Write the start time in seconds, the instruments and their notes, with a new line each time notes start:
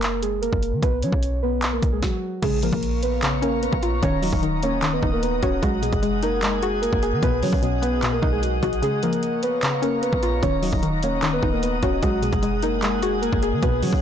Already playing: 808-style bass F#1, synth keys A#3 A#4
0.02 clap, closed hi-hat
0.22 synth keys G#3 G#4, closed hi-hat
0.42 synth keys A#3 A#4, closed hi-hat
0.53 808-style bass F#1, kick
0.63 closed hi-hat
0.73 808-style bass D#3
0.83 808-style bass B1, synth keys B3 B4, kick, closed hi-hat
1.03 808-style bass F#3, synth keys C#4 C#5, closed hi-hat
1.12 808-style bass B1, kick
1.23 closed hi-hat
1.43 synth keys B3 B4
1.62 clap, closed hi-hat
1.73 synth keys A#3 A#4
1.82 808-style bass B1, kick, closed hi-hat
1.92 synth keys G#3 G#4
2.02 synth keys F#3 F#4, kick, snare
2.42 808-style bass A#1, synth pluck C#3, synth keys G#3 G#4, ambient pad C#5 F5 A#5 C#6, kick, closed hi-hat, crash
2.63 synth pluck F3, synth keys A#3 A#4, closed hi-hat
2.73 808-style bass A#1, kick, closed hi-hat
2.83 closed hi-hat
3.03 synth keys B3 B4, closed hi-hat
3.22 synth pluck C#3, clap, closed hi-hat
3.42 synth keys A#3 A#4, synth pluck C#4, closed hi-hat
3.62 synth keys B3 B4, closed hi-hat
3.73 808-style bass A#1, kick
3.83 synth pluck F4, closed hi-hat
4.03 808-style bass D#1, synth pluck D#3, synth keys C#4 C#5, ambient pad D#5 F#5 D#6, kick, closed hi-hat
4.22 synth pluck F#3, synth keys D#4 D#5, open hi-hat
4.33 808-style bass D#1, kick
4.43 synth pluck D#3, closed hi-hat
4.63 synth pluck A#3, synth keys C#4 C#5, closed hi-hat
4.82 synth pluck D#3, clap, closed hi-hat
4.93 synth keys B3 B4
5.03 808-style bass D#1, synth pluck D#4, kick
5.13 synth keys A#3 A#4
5.22 synth keys B3 B4, closed hi-hat
5.43 808-style bass D#1, synth keys C#4 C#5, synth pluck F#4, kick, closed hi-hat
5.63 808-style bass G#1, synth keys F#3 F#4, synth pluck G#3, ambient pad G#4 G#5 D#6, kick, closed hi-hat
5.82 808-style bass B1, synth pluck B2, synth keys G#3 G#4, closed hi-hat
5.93 808-style bass F#1, kick, closed hi-hat
6.03 synth pluck G#3, closed hi-hat
6.23 synth keys A#3 A#4, synth pluck D#4, closed hi-hat
6.42 synth pluck G#3, clap, closed hi-hat
6.62 synth keys G#3 G#4, synth pluck F#4, closed hi-hat
6.82 synth keys A#3 A#4, closed hi-hat
6.93 808-style bass F#1, kick
7.03 synth pluck G#4, closed hi-hat
7.13 808-style bass D#3
7.23 808-style bass B1, synth pluck B2, synth keys B3 B4, ambient pad D#5 F#5, kick, closed hi-hat
7.43 808-style bass F#3, synth pluck F#3, synth keys C#4 C#5, open hi-hat
7.53 808-style bass B1, kick
7.63 synth pluck B2, closed hi-hat
7.82 synth pluck B3, synth keys B3 B4, closed hi-hat
8.02 synth pluck B2, clap, closed hi-hat
8.13 synth keys A#3 A#4
8.22 808-style bass B1, synth pluck D#4, kick
8.32 synth keys G#3 G#4
8.42 synth keys F#3 F#4, closed hi-hat
8.63 808-style bass A#1, synth pluck F#4, kick, closed hi-hat
8.73 closed hi-hat
8.82 synth pluck C#3, synth keys G#3 G#4, ambient pad C#5 F5 A#5 C#6, closed hi-hat
9.03 synth pluck F3, synth keys A#3 A#4, closed hi-hat
9.13 closed hi-hat
9.23 closed hi-hat
9.43 synth keys B3 B4, closed hi-hat
9.63 synth pluck C#3, clap, closed hi-hat
9.82 synth keys A#3 A#4, synth pluck C#4, closed hi-hat
10.02 synth keys B3 B4, closed hi-hat
10.13 808-style bass A#1, kick
10.23 synth pluck F4, closed hi-hat
10.43 808-style bass D#1, synth pluck D#3, synth keys C#4 C#5, ambient pad D#5 F#5 D#6, kick, closed hi-hat
10.62 synth pluck F#3, synth keys D#4 D#5, open hi-hat
10.73 808-style bass D#1, kick
10.83 synth pluck D#3, closed hi-hat
11.03 synth pluck A#3, synth keys C#4 C#5, closed hi-hat
11.22 synth pluck D#3, clap, closed hi-hat
11.33 synth keys B3 B4
11.43 808-style bass D#1, synth pluck D#4, kick
11.53 synth keys A#3 A#4
11.62 synth keys B3 B4, closed hi-hat
11.83 808-style bass D#1, synth keys C#4 C#5, synth pluck F#4, kick, closed hi-hat
12.03 808-style bass G#1, synth keys F#3 F#4, synth pluck G#3, ambient pad G#4 F#5 G#5, kick, closed hi-hat
12.22 808-style bass B1, synth pluck B2, synth keys G#3 G#4, closed hi-hat
12.33 808-style bass F#1, kick, closed hi-hat
12.43 synth pluck G#3, closed hi-hat
12.63 synth keys A#3 A#4, synth pluck D#4, closed hi-hat
12.82 synth pluck G#3, clap, closed hi-hat
13.02 synth keys G#3 G#4, synth pluck F#4, closed hi-hat
13.22 synth keys A#3 A#4, closed hi-hat
13.33 808-style bass F#1, kick
13.43 synth pluck G#4, closed hi-hat
13.53 808-style bass D#3
13.62 808-style bass B1, synth pluck B2, synth keys B3 B4, ambient pad D#5 F#5, kick, closed hi-hat
13.83 808-style bass F#3, synth pluck F#3, synth keys C#4 C#5, open hi-hat
13.93 808-style bass B1, kick